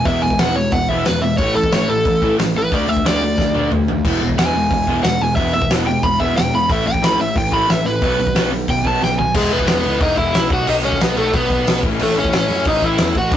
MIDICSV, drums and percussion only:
0, 0, Header, 1, 2, 480
1, 0, Start_track
1, 0, Key_signature, 4, "major"
1, 0, Tempo, 331309
1, 90, Time_signature, 4, 2, 24, 8
1, 19369, End_track
2, 0, Start_track
2, 0, Title_t, "Drums"
2, 74, Note_on_c, 9, 46, 68
2, 79, Note_on_c, 9, 36, 116
2, 219, Note_off_c, 9, 46, 0
2, 224, Note_off_c, 9, 36, 0
2, 440, Note_on_c, 9, 36, 91
2, 556, Note_on_c, 9, 46, 64
2, 568, Note_on_c, 9, 38, 126
2, 585, Note_off_c, 9, 36, 0
2, 701, Note_off_c, 9, 46, 0
2, 713, Note_off_c, 9, 38, 0
2, 1046, Note_on_c, 9, 36, 115
2, 1049, Note_on_c, 9, 46, 70
2, 1191, Note_off_c, 9, 36, 0
2, 1194, Note_off_c, 9, 46, 0
2, 1285, Note_on_c, 9, 36, 79
2, 1430, Note_off_c, 9, 36, 0
2, 1524, Note_on_c, 9, 46, 60
2, 1536, Note_on_c, 9, 38, 104
2, 1669, Note_off_c, 9, 46, 0
2, 1680, Note_off_c, 9, 38, 0
2, 2001, Note_on_c, 9, 46, 68
2, 2006, Note_on_c, 9, 36, 121
2, 2146, Note_off_c, 9, 46, 0
2, 2151, Note_off_c, 9, 36, 0
2, 2369, Note_on_c, 9, 36, 94
2, 2488, Note_on_c, 9, 46, 66
2, 2500, Note_on_c, 9, 38, 121
2, 2514, Note_off_c, 9, 36, 0
2, 2633, Note_off_c, 9, 46, 0
2, 2644, Note_off_c, 9, 38, 0
2, 2972, Note_on_c, 9, 46, 61
2, 2974, Note_on_c, 9, 36, 115
2, 3117, Note_off_c, 9, 46, 0
2, 3119, Note_off_c, 9, 36, 0
2, 3216, Note_on_c, 9, 36, 89
2, 3361, Note_off_c, 9, 36, 0
2, 3462, Note_on_c, 9, 46, 59
2, 3473, Note_on_c, 9, 38, 115
2, 3606, Note_off_c, 9, 46, 0
2, 3618, Note_off_c, 9, 38, 0
2, 3939, Note_on_c, 9, 36, 119
2, 3939, Note_on_c, 9, 46, 70
2, 4084, Note_off_c, 9, 36, 0
2, 4084, Note_off_c, 9, 46, 0
2, 4298, Note_on_c, 9, 36, 92
2, 4426, Note_on_c, 9, 46, 66
2, 4437, Note_on_c, 9, 38, 118
2, 4443, Note_off_c, 9, 36, 0
2, 4570, Note_off_c, 9, 46, 0
2, 4582, Note_off_c, 9, 38, 0
2, 4899, Note_on_c, 9, 36, 113
2, 4907, Note_on_c, 9, 38, 70
2, 5044, Note_off_c, 9, 36, 0
2, 5052, Note_off_c, 9, 38, 0
2, 5139, Note_on_c, 9, 48, 64
2, 5284, Note_off_c, 9, 48, 0
2, 5384, Note_on_c, 9, 45, 92
2, 5529, Note_off_c, 9, 45, 0
2, 5626, Note_on_c, 9, 43, 90
2, 5771, Note_off_c, 9, 43, 0
2, 5863, Note_on_c, 9, 36, 123
2, 5870, Note_on_c, 9, 49, 110
2, 6007, Note_off_c, 9, 36, 0
2, 6015, Note_off_c, 9, 49, 0
2, 6220, Note_on_c, 9, 36, 90
2, 6346, Note_on_c, 9, 46, 68
2, 6357, Note_on_c, 9, 38, 127
2, 6365, Note_off_c, 9, 36, 0
2, 6491, Note_off_c, 9, 46, 0
2, 6502, Note_off_c, 9, 38, 0
2, 6819, Note_on_c, 9, 36, 117
2, 6821, Note_on_c, 9, 46, 65
2, 6964, Note_off_c, 9, 36, 0
2, 6966, Note_off_c, 9, 46, 0
2, 7059, Note_on_c, 9, 36, 86
2, 7204, Note_off_c, 9, 36, 0
2, 7300, Note_on_c, 9, 46, 61
2, 7312, Note_on_c, 9, 38, 116
2, 7445, Note_off_c, 9, 46, 0
2, 7456, Note_off_c, 9, 38, 0
2, 7775, Note_on_c, 9, 46, 64
2, 7778, Note_on_c, 9, 36, 116
2, 7920, Note_off_c, 9, 46, 0
2, 7923, Note_off_c, 9, 36, 0
2, 8138, Note_on_c, 9, 36, 93
2, 8258, Note_on_c, 9, 46, 66
2, 8270, Note_on_c, 9, 38, 122
2, 8283, Note_off_c, 9, 36, 0
2, 8403, Note_off_c, 9, 46, 0
2, 8415, Note_off_c, 9, 38, 0
2, 8738, Note_on_c, 9, 46, 70
2, 8739, Note_on_c, 9, 36, 111
2, 8883, Note_off_c, 9, 46, 0
2, 8884, Note_off_c, 9, 36, 0
2, 8981, Note_on_c, 9, 36, 81
2, 9125, Note_off_c, 9, 36, 0
2, 9227, Note_on_c, 9, 46, 65
2, 9239, Note_on_c, 9, 38, 115
2, 9372, Note_off_c, 9, 46, 0
2, 9384, Note_off_c, 9, 38, 0
2, 9700, Note_on_c, 9, 36, 126
2, 9703, Note_on_c, 9, 46, 76
2, 9845, Note_off_c, 9, 36, 0
2, 9848, Note_off_c, 9, 46, 0
2, 10060, Note_on_c, 9, 36, 88
2, 10187, Note_on_c, 9, 46, 73
2, 10199, Note_on_c, 9, 38, 126
2, 10205, Note_off_c, 9, 36, 0
2, 10332, Note_off_c, 9, 46, 0
2, 10344, Note_off_c, 9, 38, 0
2, 10660, Note_on_c, 9, 36, 122
2, 10664, Note_on_c, 9, 46, 67
2, 10805, Note_off_c, 9, 36, 0
2, 10809, Note_off_c, 9, 46, 0
2, 10898, Note_on_c, 9, 36, 86
2, 11042, Note_off_c, 9, 36, 0
2, 11145, Note_on_c, 9, 46, 58
2, 11157, Note_on_c, 9, 38, 111
2, 11290, Note_off_c, 9, 46, 0
2, 11301, Note_off_c, 9, 38, 0
2, 11619, Note_on_c, 9, 36, 119
2, 11620, Note_on_c, 9, 46, 68
2, 11764, Note_off_c, 9, 36, 0
2, 11765, Note_off_c, 9, 46, 0
2, 11979, Note_on_c, 9, 36, 89
2, 12101, Note_on_c, 9, 46, 63
2, 12112, Note_on_c, 9, 38, 117
2, 12123, Note_off_c, 9, 36, 0
2, 12245, Note_off_c, 9, 46, 0
2, 12257, Note_off_c, 9, 38, 0
2, 12574, Note_on_c, 9, 46, 62
2, 12579, Note_on_c, 9, 36, 112
2, 12719, Note_off_c, 9, 46, 0
2, 12724, Note_off_c, 9, 36, 0
2, 12819, Note_on_c, 9, 36, 86
2, 12963, Note_off_c, 9, 36, 0
2, 13075, Note_on_c, 9, 38, 66
2, 13220, Note_off_c, 9, 38, 0
2, 13299, Note_on_c, 9, 43, 102
2, 13444, Note_off_c, 9, 43, 0
2, 13539, Note_on_c, 9, 36, 125
2, 13539, Note_on_c, 9, 49, 127
2, 13539, Note_on_c, 9, 57, 105
2, 13683, Note_off_c, 9, 49, 0
2, 13683, Note_off_c, 9, 57, 0
2, 13684, Note_off_c, 9, 36, 0
2, 13772, Note_on_c, 9, 57, 70
2, 13897, Note_on_c, 9, 36, 94
2, 13917, Note_off_c, 9, 57, 0
2, 14012, Note_on_c, 9, 57, 97
2, 14024, Note_on_c, 9, 38, 122
2, 14042, Note_off_c, 9, 36, 0
2, 14157, Note_off_c, 9, 57, 0
2, 14169, Note_off_c, 9, 38, 0
2, 14252, Note_on_c, 9, 57, 72
2, 14397, Note_off_c, 9, 57, 0
2, 14497, Note_on_c, 9, 36, 127
2, 14497, Note_on_c, 9, 57, 95
2, 14642, Note_off_c, 9, 36, 0
2, 14642, Note_off_c, 9, 57, 0
2, 14738, Note_on_c, 9, 57, 64
2, 14739, Note_on_c, 9, 36, 93
2, 14882, Note_off_c, 9, 57, 0
2, 14884, Note_off_c, 9, 36, 0
2, 14984, Note_on_c, 9, 57, 90
2, 14995, Note_on_c, 9, 38, 119
2, 15129, Note_off_c, 9, 57, 0
2, 15140, Note_off_c, 9, 38, 0
2, 15217, Note_on_c, 9, 36, 121
2, 15218, Note_on_c, 9, 57, 66
2, 15362, Note_off_c, 9, 36, 0
2, 15363, Note_off_c, 9, 57, 0
2, 15459, Note_on_c, 9, 57, 98
2, 15604, Note_off_c, 9, 57, 0
2, 15708, Note_on_c, 9, 57, 69
2, 15820, Note_on_c, 9, 36, 96
2, 15853, Note_off_c, 9, 57, 0
2, 15946, Note_on_c, 9, 57, 91
2, 15958, Note_on_c, 9, 38, 124
2, 15965, Note_off_c, 9, 36, 0
2, 16091, Note_off_c, 9, 57, 0
2, 16103, Note_off_c, 9, 38, 0
2, 16186, Note_on_c, 9, 57, 72
2, 16331, Note_off_c, 9, 57, 0
2, 16424, Note_on_c, 9, 36, 117
2, 16430, Note_on_c, 9, 57, 100
2, 16569, Note_off_c, 9, 36, 0
2, 16575, Note_off_c, 9, 57, 0
2, 16662, Note_on_c, 9, 36, 92
2, 16664, Note_on_c, 9, 57, 70
2, 16807, Note_off_c, 9, 36, 0
2, 16808, Note_off_c, 9, 57, 0
2, 16910, Note_on_c, 9, 57, 92
2, 16922, Note_on_c, 9, 38, 115
2, 17055, Note_off_c, 9, 57, 0
2, 17066, Note_off_c, 9, 38, 0
2, 17142, Note_on_c, 9, 36, 115
2, 17146, Note_on_c, 9, 57, 75
2, 17287, Note_off_c, 9, 36, 0
2, 17290, Note_off_c, 9, 57, 0
2, 17378, Note_on_c, 9, 57, 97
2, 17523, Note_off_c, 9, 57, 0
2, 17613, Note_on_c, 9, 57, 76
2, 17740, Note_on_c, 9, 36, 98
2, 17758, Note_off_c, 9, 57, 0
2, 17859, Note_on_c, 9, 57, 102
2, 17871, Note_on_c, 9, 38, 118
2, 17885, Note_off_c, 9, 36, 0
2, 18004, Note_off_c, 9, 57, 0
2, 18016, Note_off_c, 9, 38, 0
2, 18090, Note_on_c, 9, 57, 75
2, 18235, Note_off_c, 9, 57, 0
2, 18326, Note_on_c, 9, 57, 103
2, 18336, Note_on_c, 9, 36, 115
2, 18471, Note_off_c, 9, 57, 0
2, 18481, Note_off_c, 9, 36, 0
2, 18571, Note_on_c, 9, 57, 74
2, 18576, Note_on_c, 9, 36, 86
2, 18716, Note_off_c, 9, 57, 0
2, 18721, Note_off_c, 9, 36, 0
2, 18803, Note_on_c, 9, 57, 91
2, 18815, Note_on_c, 9, 38, 122
2, 18948, Note_off_c, 9, 57, 0
2, 18960, Note_off_c, 9, 38, 0
2, 19052, Note_on_c, 9, 57, 68
2, 19054, Note_on_c, 9, 36, 98
2, 19197, Note_off_c, 9, 57, 0
2, 19199, Note_off_c, 9, 36, 0
2, 19292, Note_on_c, 9, 36, 127
2, 19293, Note_on_c, 9, 57, 94
2, 19369, Note_off_c, 9, 36, 0
2, 19369, Note_off_c, 9, 57, 0
2, 19369, End_track
0, 0, End_of_file